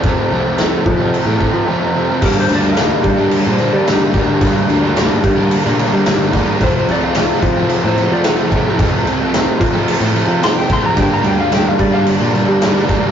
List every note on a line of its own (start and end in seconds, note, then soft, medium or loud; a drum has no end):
0.03 0.58 F2 medium
0.03 0.15 F2 medium
0.03 0.29 C3 medium
0.03 0.30 F3 medium
0.03 2.21 A3 medium
0.03 0.31 A3 medium
0.03 2.21 C4 medium
0.03 0.33 C4 medium
0.03 2.21 F4 medium
0.03 kick loud
0.03 crash medium
0.09 0.63 C5 medium
0.30 0.74 C2 medium
0.30 0.58 C3 medium
0.30 0.47 F3 medium
0.30 0.45 A3 medium
0.30 0.43 C4 medium
0.44 0.60 F3 medium
0.44 0.61 A3 medium
0.44 0.61 C4 medium
0.58 1.14 F2 medium
0.58 0.84 C3 loud
0.58 0.84 F3 medium
0.58 0.85 A3 medium
0.58 snare loud
0.58 crash medium
0.62 0.85 C4 loud
0.62 1.67 A4 medium
0.86 1.27 C3 medium
0.86 1.19 F3 medium
0.86 1.01 F3 medium
0.86 0.99 A3 medium
0.86 0.98 C4 medium
0.86 muted overdriven electric guitar stroke soft
0.86 kick medium
0.97 1.28 F3 medium
0.97 1.27 A3 medium
0.97 1.24 C4 medium
1.14 crash medium
1.25 1.48 A2 medium
1.25 1.38 F3 medium
1.25 1.40 A3 medium
1.25 1.41 C4 medium
1.39 1.66 C3 medium
1.39 1.67 F3 medium
1.39 1.68 A3 medium
1.39 1.69 C4 medium
1.39 kick medium
1.52 1.65 F3 medium
1.52 1.66 F3 medium
1.52 1.67 A3 medium
1.52 1.67 C4 medium
1.67 2.08 F2 medium
1.67 1.94 C3 medium
1.67 1.82 F3 medium
1.67 1.81 A3 medium
1.67 1.78 C4 loud
1.80 1.94 F3 medium
1.80 1.96 A3 medium
1.80 1.97 C4 medium
1.95 2.21 C3 medium
1.95 2.11 F3 medium
1.95 2.09 A3 medium
1.95 2.07 C4 medium
2.08 2.22 F3 medium
2.08 2.22 A3 medium
2.08 2.21 C4 medium
2.21 2.75 G2 medium
2.21 2.33 G2 medium
2.21 2.47 D3 medium
2.21 2.49 G3 medium
2.21 2.50 A#3 medium
2.21 4.39 D4 medium
2.21 2.51 D4 medium
2.21 4.39 G4 medium
2.21 4.39 A#4 medium
2.21 kick loud
2.21 crash loud
2.21 crash medium
2.25 2.37 A#4 medium
2.41 2.52 C5 medium
2.48 2.93 D2 medium
2.48 2.75 D3 medium
2.48 2.64 G3 medium
2.48 2.62 A#3 medium
2.48 2.61 D4 medium
2.48 crash medium
2.55 2.66 D5 medium
2.61 2.77 G3 medium
2.61 2.78 A#3 medium
2.61 2.78 D4 medium
2.67 3.22 F5 loud
2.76 3.84 G2 medium
2.76 3.03 D3 loud
2.76 3.04 G3 medium
2.76 3.04 A#3 loud
2.76 3.05 D4 medium
2.76 snare loud
2.76 crash medium
3.03 3.45 D3 medium
3.03 3.37 G3 medium
3.03 3.19 G3 medium
3.03 3.18 A#3 medium
3.03 3.15 D4 medium
3.03 muted overdriven electric guitar stroke soft
3.03 kick medium
3.03 crash medium
3.17 3.45 G3 medium
3.17 3.44 A#3 medium
3.17 3.42 D4 medium
3.22 3.45 D5 loud
3.31 crash medium
3.43 3.68 A#2 medium
3.43 3.58 G3 medium
3.43 3.59 A#3 medium
3.43 3.60 D4 medium
3.52 3.75 C5 medium
3.58 3.84 D3 medium
3.58 3.86 G3 medium
3.58 3.86 A#3 medium
3.58 3.87 D4 medium
3.58 crash medium
3.73 4.06 G3 medium
3.73 3.88 G3 medium
3.73 3.89 A#3 medium
3.73 3.90 D4 medium
3.73 3.88 D5 medium
3.85 4.27 G2 medium
3.85 4.12 D3 medium
3.85 4.01 G3 loud
3.85 4.00 A#3 loud
3.85 3.97 D4 loud
3.85 snare loud
3.85 crash medium
3.92 4.42 G4 loud
3.99 4.14 G3 medium
3.99 4.15 A#3 medium
3.99 4.15 D4 medium
4.13 4.25 D2 medium
4.13 4.39 D3 medium
4.13 4.29 G3 medium
4.13 4.27 A#3 medium
4.13 4.25 D4 medium
4.13 kick medium
4.13 crash medium
4.26 4.40 G3 medium
4.26 4.41 A#3 medium
4.26 4.42 D4 medium
4.40 4.92 G2 medium
4.40 4.52 G2 loud
4.40 4.66 D3 medium
4.40 4.67 G3 medium
4.40 6.58 A#3 medium
4.40 4.69 A#3 medium
4.40 6.58 D4 medium
4.40 4.69 D4 loud
4.40 6.59 G4 medium
4.40 kick loud
4.40 crash medium
4.67 5.13 D2 loud
4.67 4.93 D3 medium
4.67 4.83 G3 medium
4.67 4.81 A#3 medium
4.67 4.79 D4 medium
4.67 crash medium
4.80 4.94 G3 medium
4.80 4.95 A#3 medium
4.80 4.95 D4 medium
4.93 5.49 G2 loud
4.93 5.20 D3 loud
4.93 5.21 G3 loud
4.93 5.21 A#3 loud
4.93 5.21 D4 loud
4.93 crash medium
4.97 snare loud
5.21 5.64 D3 medium
5.21 5.56 G3 medium
5.21 5.40 G3 medium
5.21 muted overdriven electric guitar stroke soft
5.21 kick loud
5.21 crash medium
5.26 5.38 A#3 medium
5.26 5.37 D4 medium
5.35 5.64 G3 medium
5.35 5.63 A#3 medium
5.35 5.61 D4 medium
5.51 crash loud
5.62 5.87 A#2 loud
5.62 5.77 G3 medium
5.62 5.79 A#3 medium
5.62 5.79 D4 medium
5.77 6.05 D3 medium
5.77 6.06 G3 medium
5.77 6.06 A#3 medium
5.77 6.07 D4 loud
5.77 crash medium
5.92 6.25 G3 medium
5.92 6.05 G3 medium
5.92 6.06 A#3 medium
5.92 6.07 D4 medium
6.05 6.46 G2 medium
6.05 6.31 D3 loud
6.05 6.20 G3 medium
6.05 6.19 A#3 loud
6.05 6.17 D4 loud
6.05 snare loud
6.05 crash medium
6.18 6.32 G3 medium
6.18 6.34 A#3 medium
6.18 6.35 D4 medium
6.32 6.44 D2 medium
6.32 6.58 D3 medium
6.32 6.48 G3 medium
6.32 6.47 A#3 medium
6.32 6.45 D4 medium
6.32 kick medium
6.32 crash medium
6.46 6.60 G3 medium
6.46 6.59 A#3 medium
6.46 6.58 D4 medium
6.59 7.15 F2 loud
6.59 6.71 F2 medium
6.59 6.85 C3 loud
6.59 6.87 F3 loud
6.59 6.88 A3 medium
6.59 8.76 C4 medium
6.59 8.76 F4 medium
6.59 8.77 A4 medium
6.59 kick loud
6.59 crash medium
6.63 6.89 C4 loud
6.63 6.75 C5 medium
6.77 6.89 C5 medium
6.86 7.32 C2 medium
6.86 7.15 C3 medium
6.86 7.04 F3 medium
6.86 7.03 A3 medium
6.86 7.01 C4 medium
6.86 crash medium
6.91 7.03 D5 medium
7.02 7.17 F3 medium
7.02 7.17 A3 medium
7.02 7.18 C4 medium
7.02 7.82 F5 loud
7.15 8.25 F2 medium
7.15 7.42 C3 loud
7.15 7.43 F3 loud
7.15 7.43 A3 loud
7.15 7.43 C4 loud
7.15 snare loud
7.15 crash medium
7.42 7.84 C3 medium
7.42 7.75 F3 loud
7.42 7.57 F3 medium
7.42 7.56 A3 medium
7.42 7.55 C4 medium
7.42 muted overdriven electric guitar stroke soft
7.42 kick medium
7.42 crash medium
7.57 7.86 F3 medium
7.57 7.84 A3 medium
7.57 7.82 C4 medium
7.69 crash medium
7.84 8.06 A2 loud
7.84 7.97 F3 medium
7.84 7.98 A3 medium
7.84 8.00 C4 medium
7.84 8.11 C5 medium
7.96 8.25 C3 medium
7.96 8.26 F3 medium
7.96 8.26 A3 medium
7.96 crash medium
8.01 8.27 C4 medium
8.10 8.44 F3 loud
8.10 8.24 F3 medium
8.10 8.24 A3 medium
8.10 8.26 C4 medium
8.10 8.25 D5 medium
8.24 8.66 F2 medium
8.24 8.51 C3 medium
8.24 8.41 F3 loud
8.24 8.39 A3 loud
8.24 8.79 A4 loud
8.24 snare loud
8.24 crash medium
8.28 8.38 C4 loud
8.39 8.53 F3 medium
8.39 8.53 A3 medium
8.39 8.55 C4 medium
8.52 8.63 C2 loud
8.52 8.79 C3 medium
8.52 8.68 F3 medium
8.52 8.66 A3 medium
8.52 8.64 C4 medium
8.52 kick medium
8.52 crash medium
8.66 8.80 F3 medium
8.66 8.80 A3 medium
8.66 8.81 C4 medium
8.79 9.31 F2 medium
8.79 8.90 F2 loud
8.79 9.04 C3 loud
8.79 9.05 F3 medium
8.79 9.06 A3 medium
8.79 10.96 C4 medium
8.79 9.07 C4 loud
8.79 10.96 F4 medium
8.79 10.96 A4 medium
8.79 kick loud
8.79 crash medium
9.05 9.49 C2 loud
9.05 9.32 C3 medium
9.05 9.21 F3 medium
9.05 9.20 A3 medium
9.05 9.18 C4 medium
9.05 crash medium
9.19 9.33 F3 medium
9.19 9.33 A3 medium
9.19 9.34 C4 medium
9.32 9.88 F2 medium
9.32 9.59 C3 loud
9.32 9.59 F3 loud
9.32 9.60 A3 loud
9.32 9.60 C4 loud
9.32 snare loud
9.32 crash medium
9.59 10.01 C3 medium
9.59 9.93 F3 medium
9.59 9.76 F3 medium
9.59 9.74 A3 medium
9.59 9.72 C4 medium
9.59 muted overdriven electric guitar stroke soft
9.59 kick medium
9.59 crash medium
9.73 10.03 F3 medium
9.73 10.01 A3 medium
9.73 9.99 C4 medium
9.88 crash loud
10.00 10.23 A2 medium
10.00 10.13 F3 medium
10.00 10.14 A3 medium
10.00 10.15 C4 medium
10.13 10.41 C3 medium
10.13 10.42 F3 medium
10.13 10.42 A3 medium
10.13 10.43 C4 medium
10.13 crash medium
10.27 10.61 F3 medium
10.27 10.40 F3 medium
10.27 10.41 A3 medium
10.27 10.42 C4 medium
10.41 10.83 F2 medium
10.41 10.66 C3 medium
10.41 10.56 F3 medium
10.41 10.55 A3 loud
10.41 10.53 C4 medium
10.41 10.57 C6 loud
10.41 snare loud
10.41 crash medium
10.54 10.68 F3 medium
10.54 10.69 A3 medium
10.54 10.70 C4 medium
10.54 10.71 G5 medium
10.54 snare soft
10.68 10.81 C2 medium
10.68 10.95 C3 medium
10.68 10.83 F3 medium
10.68 10.81 A3 medium
10.68 10.79 C4 medium
10.68 kick medium
10.68 crash medium
10.73 10.85 C6 medium
10.81 10.96 F3 medium
10.81 10.95 A3 medium
10.81 10.95 C4 medium
10.86 10.98 A#5 medium
10.95 11.49 G2 medium
10.95 11.08 G2 medium
10.95 11.21 D3 loud
10.95 11.23 G3 medium
10.95 11.24 A#3 loud
10.95 13.11 D4 medium
10.95 11.24 D4 medium
10.95 13.11 G4 medium
10.95 13.11 A#4 medium
10.95 kick loud
10.95 crash medium
11.00 11.13 G5 medium
11.14 11.26 A#5 medium
11.22 11.67 D2 loud
11.22 11.49 D3 medium
11.22 11.41 G3 medium
11.22 11.39 A#3 medium
11.22 11.37 D4 medium
11.22 crash medium
11.27 11.40 G5 medium
11.38 11.51 G3 medium
11.38 11.52 A#3 medium
11.38 11.52 D4 medium
11.38 11.53 F5 loud
11.49 12.59 G2 medium
11.49 11.78 D3 loud
11.49 11.79 G3 loud
11.49 11.79 A#3 loud
11.49 11.80 D4 loud
11.49 snare loud
11.49 crash medium
11.55 11.67 G5 loud
11.69 11.81 F5 medium
11.79 12.22 D3 medium
11.79 12.12 G3 loud
11.79 11.97 G3 medium
11.79 11.96 A#3 medium
11.79 11.93 D5 loud
11.79 muted overdriven electric guitar stroke soft
11.79 kick medium
11.79 crash medium
11.83 11.94 D4 loud
11.91 12.21 G3 medium
11.91 12.19 A#3 medium
11.91 12.18 D4 medium
11.91 12.07 F5 loud
11.97 12.23 A#3 medium
12.06 12.35 D5 loud
12.06 crash medium
12.19 12.42 A#2 loud
12.19 12.32 G3 medium
12.19 12.33 A#3 medium
12.19 12.34 D4 medium
12.24 12.50 A#3 medium
12.32 12.59 D3 medium
12.32 12.60 G3 medium
12.32 12.61 A#3 medium
12.32 12.61 D4 loud
12.32 crash medium
12.37 13.11 D5 loud
12.48 12.81 G3 medium
12.48 12.63 G3 medium
12.48 12.63 A#3 medium
12.48 12.64 D4 medium
12.59 13.02 G2 medium
12.59 12.85 D3 medium
12.59 12.75 G3 loud
12.59 12.73 A#3 loud
12.59 12.71 D4 loud
12.59 snare loud
12.59 crash medium
12.72 12.86 G3 medium
12.72 12.87 A#3 medium
12.72 12.88 D4 medium
12.77 snare soft
12.86 13.00 D2 medium
12.86 13.11 D3 medium
12.86 13.02 G3 medium
12.86 13.00 A#3 medium
12.86 12.98 D4 medium
12.86 kick medium
12.86 crash medium
13.00 13.11 G3 medium
13.00 13.11 A#3 medium
13.00 13.11 D4 medium